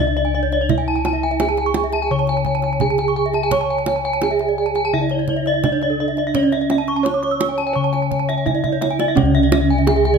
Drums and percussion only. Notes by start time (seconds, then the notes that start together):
0.17 kendang slap
0.52 kendang slap
0.69 kendang low
1.05 kendang high
1.40 kendang high
1.57 kendang slap
1.74 kendang high
1.92 kendang slap
2.27 kendang slap
2.45 kendang low
2.62 kendang slap
2.80 kendang low
2.98 kendang slap
3.34 kendang slap
3.51 kendang low
3.86 kendang high
4.22 kendang high
4.39 kendang slap
4.75 kendang slap
5.10 kendang slap
5.28 kendang low
5.46 kendang slap
5.64 kendang high, kendang low
5.82 kendang slap
6.17 kendang slap
6.35 kendang low
6.52 kendang slap
6.70 kendang high
6.88 kendang slap
7.06 kendang high
7.23 kendang slap
7.41 kendang high
7.58 kendang slap
7.94 kendang slap
8.12 kendang low
8.29 kendang slap
8.47 kendang low
8.64 kendang low
8.82 kendang high
8.99 kendang high
9.17 kendang low
9.52 kendang high
9.87 kendang high
10.05 kendang slap